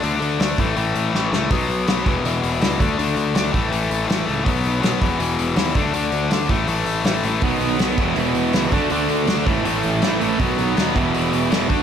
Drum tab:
HH |oooooo--|oooooooo|oooooooo|oooooooo|
SD |--o---oo|--o---o-|--o---o-|--o---o-|
BD |---o----|o--o---o|---o----|o--o---o|

HH |oooooooo|oooooooo|oooooooo|oooooooo|
SD |--o---o-|--o---o-|--o---o-|--o---o-|
BD |---o----|o--o---o|---o----|o--o---o|